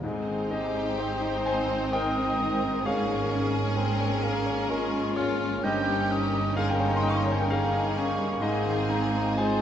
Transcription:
0.02 5.60 G#1 medium
0.02 2.82 G#2 medium
0.02 5.60 G#2 medium
0.02 1.01 G#3 medium
0.02 2.81 C4 medium
0.02 2.81 D#4 medium
0.02 0.53 G#4 medium
0.02 2.82 C5 medium
0.27 0.66 D#3 soft
0.51 0.89 C4 soft
0.51 1.41 G4 medium
0.51 1.42 G#4 soft
0.51 2.85 C5 medium
0.51 1.42 D#5 medium
0.74 1.12 D#4 soft
0.98 1.92 C4 medium
0.98 1.36 C5 medium
0.98 1.94 C6 medium
1.22 1.59 D#4 soft
1.45 1.93 C5 medium
1.45 1.67 C5 medium
1.45 1.83 D#5 medium
1.45 1.89 G#5 medium
1.68 2.06 C5 medium
1.93 2.84 C4 medium
1.93 2.30 D#4 soft
1.93 2.85 A#4 medium
1.93 2.82 A#4 medium
1.93 2.82 G5 medium
1.93 2.87 D#6 medium
2.17 2.54 C4 soft
2.40 2.77 D#3 soft
2.64 2.86 C4 soft
2.85 5.60 G#2 medium
2.85 8.23 A#3 medium
2.85 5.60 C#4 medium
2.85 8.23 C#4 medium
2.85 3.30 C#4 medium
2.85 5.12 G#4 medium
2.85 5.13 G#4 medium
2.85 5.62 A#4 medium
2.85 3.79 A#4 medium
2.85 5.13 F5 medium
2.85 3.79 C#6 medium
3.10 3.46 G#3 soft
3.31 3.79 C#4 medium
3.31 3.68 C#4 medium
3.54 3.91 G#3 soft
3.76 4.24 C4 medium
3.76 4.72 G#4 medium
3.76 4.13 A#4 soft
3.76 4.24 C6 medium
4.00 4.37 C#5 medium
4.22 4.70 A#3 medium
4.22 4.60 A#4 soft
4.22 4.72 A#5 medium
4.46 4.83 C#5 medium
4.69 5.16 G#3 medium
4.69 5.63 F4 medium
4.69 5.07 A#4 medium
4.69 5.18 C#6 medium
4.93 5.31 C#4 soft
5.16 5.54 G#3 soft
5.16 5.65 C#4 medium
5.16 5.64 F4 medium
5.16 5.61 F4 soft
5.16 5.61 C#5 medium
5.16 5.65 F6 medium
5.41 5.64 C#4 soft
5.63 8.42 G1 medium
5.63 8.41 G2 medium
5.63 8.38 G2 medium
5.63 6.30 C4 medium
5.63 8.37 C#4 medium
5.63 8.37 D#4 medium
5.63 6.55 G4 medium
5.63 6.29 G4 medium
5.63 6.54 G4 medium
5.63 8.37 A#4 medium
5.63 6.54 D#5 medium
5.63 6.13 G6 medium
5.88 6.25 G3 soft
6.10 6.48 C#4 soft
6.10 6.57 D#6 medium
6.35 6.71 D#4 soft
6.56 9.41 A#3 medium
6.56 7.49 D#4 medium
6.56 6.70 G#4 medium
6.56 6.69 G#4 medium
6.56 6.94 A#4 medium
6.56 6.69 F5 medium
6.56 7.21 C6 medium
6.70 6.80 A#4 soft
6.70 6.79 G5 medium
6.79 6.89 C5 soft
6.79 7.17 C#5 medium
6.79 6.88 G#5 medium
6.88 6.96 C#5 soft
6.88 6.95 A#5 medium
6.95 7.02 D#5 soft
6.95 7.02 C6 medium
7.02 7.40 D#5 medium
7.02 7.09 G5 soft
7.02 7.08 D#6 medium
7.08 7.15 F5 soft
7.08 7.16 C#6 medium
7.15 7.23 D#5 medium
7.15 7.23 C6 medium
7.23 7.31 C#5 soft
7.23 7.64 C#5 medium
7.23 7.31 A#5 medium
7.31 7.40 C5 soft
7.31 7.40 G#5 medium
7.40 7.50 A#4 soft
7.40 7.49 G5 medium
7.47 8.41 C#4 medium
7.47 8.41 G#4 medium
7.47 7.87 A#4 medium
7.47 8.38 F5 medium
7.47 7.93 A#5 soft
7.52 8.39 G#4 medium
7.73 8.10 D#4 medium
7.96 8.33 C#4 medium
7.96 8.43 C#6 medium
8.18 8.41 G3 soft
8.40 9.62 G#1 medium
8.40 9.62 G#2 medium
8.40 9.62 G#3 medium
8.40 9.62 C4 medium
8.40 9.37 C4 medium
8.40 9.40 D#4 medium
8.40 9.37 D#4 medium
8.40 9.37 G#4 medium
8.40 9.35 G#4 medium
8.40 9.35 D#5 medium
8.40 8.91 C6 medium
8.65 9.05 D#3 soft
8.89 9.29 C4 medium
8.89 9.40 A#5 medium
9.15 9.53 D#4 soft
9.38 9.62 G#3 medium
9.38 9.62 C4 medium
9.38 9.62 D#4 medium
9.38 9.62 F4 medium
9.38 9.62 G#4 medium
9.38 9.62 C5 medium
9.38 9.62 G#5 medium
9.38 9.62 C6 medium

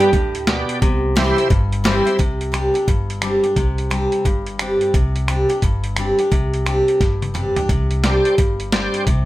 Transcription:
0.00 0.10 G2 medium
0.00 0.11 G3 medium
0.00 0.12 B3 medium
0.00 0.12 D4 medium
0.00 0.11 G4 medium
0.00 0.12 G4 medium
0.00 1.00 G4 loud
0.00 0.11 B4 medium
0.00 0.11 D5 loud
0.00 closed hi-hat medium
0.13 0.61 D2 medium
0.13 0.46 A2 medium
0.13 kick loud
0.13 closed hi-hat medium
0.35 closed hi-hat medium
0.47 0.80 B2 medium
0.47 0.80 G4 medium
0.47 0.80 B4 medium
0.47 0.80 D5 medium
0.47 snare loud
0.47 closed hi-hat medium
0.69 closed hi-hat medium
0.82 1.30 C2 medium
0.82 1.48 C3 medium
0.82 kick loud
0.82 closed hi-hat medium
1.16 1.36 E3 medium
1.16 1.37 G3 medium
1.16 1.37 C4 medium
1.16 1.35 E4 loud
1.16 1.48 G4 medium
1.16 1.48 C5 medium
1.16 1.48 E5 loud
1.16 snare loud
1.16 closed hi-hat medium
1.36 1.50 C4 soft
1.36 1.49 E4 medium
1.36 closed hi-hat medium
1.50 1.99 G1 medium
1.50 2.16 G2 medium
1.50 kick loud
1.50 closed hi-hat medium
1.73 closed hi-hat medium
1.84 2.05 E3 medium
1.84 2.05 G3 medium
1.84 2.06 C4 medium
1.84 2.04 E4 loud
1.84 2.17 G4 medium
1.84 2.17 C5 medium
1.84 2.17 E5 medium
1.84 snare loud
1.84 closed hi-hat medium
2.05 2.19 C4 soft
2.05 2.18 E4 medium
2.05 closed hi-hat medium
2.19 2.68 C2 medium
2.19 2.85 C3 medium
2.19 kick loud
2.19 closed hi-hat medium
2.41 closed hi-hat medium
2.52 2.73 G3 medium
2.52 2.74 C4 medium
2.52 2.74 D4 medium
2.52 2.73 G4 medium
2.52 finger snap loud
2.52 closed hi-hat medium
2.74 2.88 D4 soft
2.74 2.87 G4 soft
2.74 closed hi-hat medium
2.88 3.36 G1 medium
2.88 3.54 G2 medium
2.88 kick medium
2.88 closed hi-hat medium
3.10 closed hi-hat medium
3.22 3.43 G3 medium
3.22 3.43 C4 medium
3.22 3.43 D4 medium
3.22 3.42 G4 medium
3.22 finger snap loud
3.22 closed hi-hat medium
3.43 3.57 D4 soft
3.43 3.56 G4 medium
3.43 closed hi-hat medium
3.56 4.05 C2 medium
3.56 4.23 C3 medium
3.56 kick loud
3.56 closed hi-hat medium
3.78 closed hi-hat soft
3.90 4.24 G3 soft
3.90 4.24 C4 medium
3.90 4.25 D4 medium
3.90 4.25 G4 medium
3.90 finger snap medium
3.90 closed hi-hat medium
4.12 closed hi-hat medium
4.25 4.74 G1 medium
4.25 4.92 G2 medium
4.25 kick medium
4.25 closed hi-hat medium
4.46 closed hi-hat medium
4.59 4.93 G3 medium
4.59 4.93 C4 medium
4.59 4.93 D4 medium
4.59 4.94 G4 medium
4.59 finger snap medium
4.59 closed hi-hat medium
4.81 closed hi-hat medium
4.94 5.42 C2 medium
4.94 5.61 C3 medium
4.94 kick loud
4.94 closed hi-hat medium
5.16 closed hi-hat medium
5.28 5.49 G3 soft
5.28 5.49 C4 soft
5.28 5.49 D4 medium
5.28 5.48 G4 medium
5.28 finger snap loud
5.28 closed hi-hat medium
5.49 5.63 D4 soft
5.49 5.62 G4 medium
5.49 closed hi-hat medium
5.62 6.11 G1 medium
5.62 6.29 G2 medium
5.62 kick medium
5.62 closed hi-hat medium
5.84 closed hi-hat medium
5.97 6.18 G3 medium
5.97 6.18 C4 medium
5.97 6.19 D4 medium
5.97 6.18 G4 medium
5.97 finger snap loud
5.97 closed hi-hat medium
6.19 6.32 D4 soft
6.19 6.31 G4 soft
6.19 closed hi-hat medium
6.32 6.80 C2 medium
6.32 6.98 C3 medium
6.32 kick loud
6.32 closed hi-hat medium
6.54 closed hi-hat medium
6.66 6.99 G3 soft
6.66 6.99 C4 medium
6.66 7.00 D4 medium
6.66 7.00 G4 medium
6.66 finger snap medium
6.66 closed hi-hat medium
6.88 closed hi-hat medium
7.00 7.49 G1 medium
7.00 7.67 G2 medium
7.00 kick medium
7.00 snare soft
7.00 closed hi-hat medium
7.22 closed hi-hat medium
7.22 high tom medium
7.34 7.55 G3 medium
7.34 7.56 C4 medium
7.34 7.56 D4 medium
7.34 7.55 G4 medium
7.34 closed hi-hat medium
7.34 mid tom medium
7.56 7.70 D4 soft
7.56 7.69 G4 soft
7.56 closed hi-hat medium
7.56 floor tom medium
7.69 8.18 C2 medium
7.69 8.36 C3 medium
7.69 kick loud
7.69 closed hi-hat medium
7.91 closed hi-hat medium
8.03 8.37 G3 medium
8.03 8.37 C4 medium
8.03 8.37 D4 medium
8.03 8.36 G4 medium
8.03 8.38 G4 medium
8.03 8.36 C5 medium
8.03 8.36 D5 medium
8.03 snare loud
8.03 closed hi-hat medium
8.25 closed hi-hat medium
8.38 8.87 G1 medium
8.38 9.04 G2 medium
8.38 kick loud
8.38 closed hi-hat medium
8.60 closed hi-hat medium
8.72 9.05 G3 medium
8.72 9.06 C4 medium
8.72 9.06 D4 medium
8.72 9.04 G4 medium
8.72 9.06 G4 medium
8.72 9.04 C5 medium
8.72 9.05 D5 medium
8.72 snare loud
8.72 closed hi-hat medium
8.94 closed hi-hat medium
9.07 9.25 C2 medium
9.07 9.25 C3 medium
9.07 kick loud
9.07 closed hi-hat medium

